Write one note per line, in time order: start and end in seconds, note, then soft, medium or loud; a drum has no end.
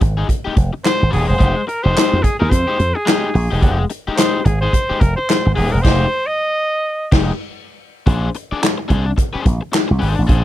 0.01 0.23 G#1 medium
0.01 muted overdriven electric guitar stroke soft
0.01 kick medium
0.01 closed hi-hat medium
0.17 0.27 G#3 medium
0.17 0.28 D#4 soft
0.17 0.29 G#4 medium
0.28 muted overdriven electric guitar stroke soft
0.28 kick medium
0.28 closed hi-hat medium
0.45 0.54 G#3 medium
0.45 0.54 D#4 medium
0.45 0.55 G4 medium
0.45 muted slap bass stroke soft
0.55 0.70 F1 medium
0.55 muted overdriven electric guitar stroke soft
0.55 kick loud
0.55 closed hi-hat medium
0.73 muted overdriven electric guitar stroke soft
0.85 1.11 C5 loud
0.85 snare loud
0.85 clap medium
0.85 closed hi-hat medium
1.00 1.11 G#1 medium
1.00 muted overdriven electric guitar stroke medium
1.11 1.26 D#1 medium
1.11 1.33 G#3 medium
1.11 1.28 D#4 medium
1.11 1.27 G4 loud
1.11 1.28 G#4 medium
1.11 open hi-hat medium
1.28 1.38 E1 medium
1.28 1.65 C5 medium
1.28 muted overdriven electric guitar stroke soft
1.38 1.53 F1 loud
1.38 1.61 G#3 medium
1.38 1.56 D#4 medium
1.38 1.55 G4 medium
1.38 kick loud
1.38 closed hi-hat medium
1.56 muted overdriven electric guitar stroke soft
1.67 1.85 A#4 medium
1.67 muted overdriven electric guitar stroke soft
1.67 closed hi-hat medium
1.83 1.94 F1 medium
1.83 1.93 G#3 medium
1.83 1.94 D#4 medium
1.83 1.94 G4 medium
1.83 2.24 C5 loud
1.94 2.16 G#3 medium
1.94 2.17 D#4 loud
1.94 2.17 G4 medium
1.94 snare loud
1.94 clap medium
1.94 closed hi-hat loud
2.13 2.22 F2 medium
2.22 2.39 G#4 medium
2.22 muted overdriven electric guitar stroke soft
2.22 kick medium
2.22 closed hi-hat medium
2.40 2.49 D#2 medium
2.40 2.50 G#3 medium
2.40 2.50 D#4 medium
2.40 2.51 G#4 medium
2.40 2.51 A#4 medium
2.50 2.64 F2 loud
2.50 2.97 C5 loud
2.50 muted overdriven electric guitar stroke soft
2.50 kick medium
2.50 closed hi-hat loud
2.67 2.77 G#3 medium
2.67 2.78 D#4 medium
2.67 2.78 G4 medium
2.78 2.92 F2 loud
2.78 muted overdriven electric guitar stroke soft
2.78 closed hi-hat medium
2.95 3.79 G#4 medium
2.95 muted overdriven electric guitar stroke soft
3.06 3.27 G#3 medium
3.06 3.28 D#4 medium
3.06 3.28 G4 loud
3.06 snare loud
3.06 clap medium
3.06 closed hi-hat medium
3.34 3.48 A#1 medium
3.34 muted overdriven electric guitar stroke soft
3.34 open hi-hat medium
3.51 3.60 E1 medium
3.51 3.60 G#3 medium
3.51 3.61 D#4 medium
3.51 3.62 G4 medium
3.61 3.84 F1 loud
3.61 3.83 G#3 medium
3.61 3.79 D#4 medium
3.61 3.77 G4 medium
3.61 kick medium
3.61 closed hi-hat medium
3.79 muted overdriven electric guitar stroke medium
3.90 muted overdriven electric guitar stroke soft
3.90 closed hi-hat medium
4.07 4.16 G#3 medium
4.07 4.17 D#4 medium
4.07 4.18 G4 medium
4.07 muted slap bass stroke soft
4.17 4.39 G#3 medium
4.17 4.39 D#4 medium
4.17 4.40 G4 medium
4.17 4.47 C5 loud
4.17 snare loud
4.17 clap loud
4.17 closed hi-hat loud
4.45 4.67 G#1 medium
4.45 4.60 G#4 medium
4.45 muted overdriven electric guitar stroke soft
4.45 kick medium
4.45 closed hi-hat medium
4.61 4.72 G#3 soft
4.61 4.72 D#4 medium
4.61 4.74 G#4 medium
4.61 5.02 C5 medium
4.73 muted overdriven electric guitar stroke soft
4.73 kick medium
4.73 closed hi-hat medium
4.90 5.00 G#3 medium
4.90 5.01 D#4 medium
4.90 5.01 G4 medium
4.90 muted slap bass stroke soft
5.00 5.14 F1 medium
5.00 5.16 A#4 medium
5.00 muted overdriven electric guitar stroke soft
5.00 kick loud
5.00 closed hi-hat medium
5.16 5.53 C5 medium
5.16 muted overdriven electric guitar stroke soft
5.29 snare loud
5.29 clap medium
5.29 closed hi-hat medium
5.46 5.55 G#1 medium
5.46 muted overdriven electric guitar stroke soft
5.55 5.70 D#1 medium
5.55 5.77 G#3 medium
5.55 5.72 D#4 medium
5.55 5.71 G4 medium
5.55 5.73 G#4 medium
5.55 open hi-hat medium
5.72 5.84 E1 medium
5.72 5.83 A#4 medium
5.72 muted overdriven electric guitar stroke medium
5.82 6.05 F1 medium
5.82 6.04 G#3 medium
5.82 6.04 D#4 loud
5.82 6.05 G4 loud
5.82 6.28 C5 loud
5.82 kick loud
5.82 snare loud
5.82 crash medium
6.27 7.11 D#5 loud
7.12 7.30 F1 loud
7.12 7.31 G#3 medium
7.12 7.31 D#4 medium
7.12 7.30 G4 medium
7.12 kick loud
7.12 snare loud
7.12 crash medium
8.06 8.28 A#1 medium
8.06 8.28 D4 medium
8.06 8.28 G#4 medium
8.06 8.28 C5 medium
8.06 kick loud
8.06 closed hi-hat medium
8.34 muted overdriven electric guitar stroke soft
8.34 closed hi-hat medium
8.52 8.61 D4 medium
8.52 8.61 G#4 medium
8.52 8.62 D5 medium
8.52 muted slap bass stroke soft
8.62 muted overdriven electric guitar stroke soft
8.62 snare loud
8.62 clap loud
8.62 closed hi-hat loud
8.78 muted overdriven electric guitar stroke medium
8.88 9.12 C2 medium
8.88 9.10 D4 medium
8.88 9.05 G#4 loud
8.88 9.05 C5 loud
8.88 kick medium
8.88 closed hi-hat medium
9.06 muted overdriven electric guitar stroke medium
9.17 muted overdriven electric guitar stroke soft
9.17 kick loud
9.17 closed hi-hat loud
9.33 9.43 D4 medium
9.33 9.44 G#4 medium
9.33 9.44 C5 medium
9.33 muted slap bass stroke soft
9.44 9.59 A#1 loud
9.44 muted overdriven electric guitar stroke soft
9.44 kick loud
9.44 closed hi-hat medium
9.61 muted overdriven electric guitar stroke soft
9.72 muted overdriven electric guitar stroke soft
9.72 snare loud
9.72 clap loud
9.72 closed hi-hat medium
9.88 9.99 C2 medium
9.88 muted overdriven electric guitar stroke soft
9.99 10.15 G#1 medium
9.99 10.22 D4 medium
9.99 10.16 G#4 medium
9.99 10.15 C5 medium
9.99 open hi-hat medium
10.16 10.27 A1 medium
10.16 muted overdriven electric guitar stroke medium
10.27 10.42 A#1 loud
10.27 10.44 D4 medium
10.27 10.44 G#4 medium
10.27 10.44 C5 medium
10.27 kick loud
10.27 closed hi-hat medium